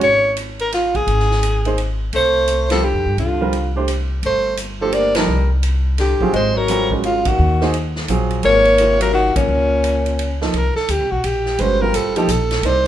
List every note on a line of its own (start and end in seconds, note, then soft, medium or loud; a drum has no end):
0.01 1.03 G#1 medium
0.01 0.36 C#5 medium
0.01 ride soft
0.37 hi-hat pedal soft
0.37 ride medium
0.59 0.72 A#4 medium
0.59 ride soft
0.72 0.98 F4 medium
0.72 snare soft
0.72 ride medium
0.95 1.79 G#4 medium
0.95 kick soft
0.95 ride soft
1.07 2.09 G#1 medium
1.07 ride soft
1.20 snare soft
1.31 snare soft
1.43 hi-hat pedal medium
1.43 ride medium
1.65 1.77 A#3 medium
1.65 1.77 D#4 soft
1.65 1.78 G#4 medium
1.65 1.78 C5 medium
1.65 ride soft
1.78 ride soft
2.13 2.91 C2 medium
2.13 2.67 A3 medium
2.13 2.68 C5 medium
2.13 ride soft
2.48 hi-hat pedal medium
2.48 ride medium
2.70 2.85 F3 medium
2.70 2.82 G3 medium
2.70 2.83 C4 medium
2.70 2.83 F4 medium
2.70 2.86 A4 medium
2.70 2.83 A#4 medium
2.70 snare medium
2.70 ride medium
2.83 3.18 D3 medium
2.83 3.19 G4 medium
2.94 3.05 F2 medium
3.06 3.17 G2 medium
3.17 4.19 C2 medium
3.17 3.72 D3 medium
3.17 3.72 F4 medium
3.17 ride soft
3.41 3.52 G3 medium
3.41 3.53 C4 medium
3.41 3.53 F4 medium
3.41 3.53 A#4 medium
3.53 ride soft
3.76 3.87 A3 medium
3.76 3.88 D4 medium
3.76 3.88 G4 medium
3.76 3.88 C5 medium
3.88 hi-hat pedal soft
3.88 ride medium
4.23 5.24 G1 medium
4.23 4.57 A3 medium
4.23 4.57 C5 medium
4.23 ride soft
4.57 hi-hat pedal soft
4.57 ride medium
4.81 4.95 F3 medium
4.81 5.14 A3 medium
4.81 5.14 D4 soft
4.81 5.14 G4 medium
4.81 4.95 A4 medium
4.81 5.14 C5 medium
4.92 5.16 A#3 medium
4.92 5.17 D5 medium
4.92 ride medium
5.15 5.28 F3 medium
5.15 5.50 G3 medium
5.15 5.28 A#3 medium
5.15 5.28 D#4 medium
5.15 5.28 A4 medium
5.15 5.51 A#4 medium
5.15 snare medium
5.15 ride medium
5.28 6.16 C2 medium
5.63 hi-hat pedal soft
5.63 ride medium
5.98 6.31 D3 medium
5.98 6.32 G4 medium
5.98 snare soft
5.98 ride medium
6.20 6.33 F#3 medium
6.20 6.33 C4 medium
6.20 6.33 F4 medium
6.20 6.33 G#4 medium
6.20 muted upright bass stroke soft
6.20 kick soft
6.33 7.35 G#1 medium
6.33 6.56 G#3 medium
6.33 6.59 C5 medium
6.33 ride soft
6.55 6.90 F#3 medium
6.55 6.92 A#4 medium
6.68 6.89 G3 medium
6.68 6.89 C4 soft
6.68 6.90 F4 medium
6.68 6.90 A4 medium
6.68 hi-hat pedal medium
6.68 ride medium
6.91 7.22 G#3 medium
6.91 7.22 C#4 soft
6.91 7.22 F#4 soft
6.91 7.22 A#4 medium
6.91 kick soft
7.04 7.28 C#3 medium
7.04 7.29 F4 medium
7.04 ride soft
7.25 7.74 D#3 medium
7.25 7.75 F#4 medium
7.25 kick medium
7.25 ride medium
7.39 8.05 D#2 medium
7.61 7.73 A#3 medium
7.61 7.73 D#4 medium
7.61 7.73 G#4 medium
7.61 7.73 C5 medium
7.61 snare soft
7.74 ride medium
7.96 snare soft
8.08 8.41 A#1 medium
8.08 8.62 F#3 medium
8.08 8.62 C4 medium
8.08 8.62 F4 medium
8.08 8.62 G#4 medium
8.08 hi-hat pedal soft
8.08 ride medium
8.30 ride soft
8.43 9.32 G#1 medium
8.43 8.98 A#3 medium
8.43 8.98 C#5 loud
8.43 ride soft
8.65 ride soft
8.78 9.32 C3 medium
8.78 9.32 F4 medium
8.78 9.33 A#4 soft
8.78 9.33 C#5 medium
8.78 hi-hat pedal soft
8.78 ride medium
9.00 9.12 F#3 medium
9.00 9.14 A#4 medium
9.00 ride medium
9.13 9.34 D#3 medium
9.13 9.35 F#4 medium
9.35 10.37 A#2 medium
9.35 10.38 C#4 medium
9.35 kick medium
9.35 ride medium
9.48 10.50 C#2 medium
9.84 hi-hat pedal soft
9.84 ride medium
10.06 ride soft
10.19 ride medium
10.41 10.53 F3 medium
10.41 10.53 A#3 medium
10.41 10.53 D#4 medium
10.41 10.54 A4 medium
10.41 snare soft
10.53 10.74 C2 medium
10.53 10.76 A#4 medium
10.53 ride soft
10.76 10.92 A4 medium
10.76 muted upright bass stroke soft
10.76 snare soft
10.88 11.00 D2 medium
10.88 11.13 G4 medium
10.88 hi-hat pedal medium
10.88 ride medium
11.00 11.11 C2 soft
11.11 11.23 A#1 medium
11.11 11.27 F#4 medium
11.24 11.58 A#1 medium
11.24 11.62 G4 medium
11.24 ride medium
11.46 snare soft
11.59 11.92 G1 medium
11.59 11.79 G#3 medium
11.59 11.80 C#4 soft
11.59 11.80 F#4 soft
11.59 11.80 B4 medium
11.59 11.83 C5 medium
11.59 ride medium
11.82 12.12 G3 medium
11.82 12.12 C4 medium
11.82 12.12 F4 soft
11.82 11.97 A#4 medium
11.82 12.13 A#4 medium
11.93 12.27 A1 medium
11.93 12.18 A4 medium
11.93 hi-hat pedal medium
11.93 ride medium
12.16 12.28 F3 medium
12.16 12.28 A#3 medium
12.16 12.28 D#4 medium
12.16 12.33 G4 medium
12.16 12.29 A4 medium
12.16 ride soft
12.28 12.62 A#1 medium
12.28 12.67 A4 medium
12.28 hi-hat pedal medium
12.28 ride medium
12.51 snare medium
12.51 ride soft
12.63 12.87 C2 medium
12.63 12.87 A#3 medium
12.63 12.87 D#4 soft
12.63 12.87 A4 soft
12.63 12.87 C5 loud
12.63 12.87 D5 medium
12.63 ride medium